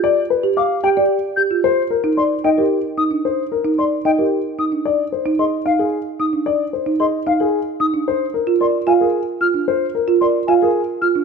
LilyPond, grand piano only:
\new Staff \with { instrumentName = "Grand piano" } { \time 3/4 \key bes \mixolydian \tempo 4 = 112 d''16 r16 b'16 r16 f''16 r16 g''16 g'16 r4 | c''16 r16 bes'16 r16 d''16 r16 ees''16 g'16 r4 | c''16 r16 bes'16 r16 d''16 r16 ees''16 g'16 r4 | d''16 r16 c''16 r16 ees''16 r16 f''16 aes'16 r4 |
d''16 r16 c''16 r16 ees''16 r16 f''16 aes'16 r4 | c''16 r16 bes'16 r16 d''16 r16 f''16 aes'16 r4 | c''16 r16 bes'16 r16 d''16 r16 f''16 aes'16 r4 | }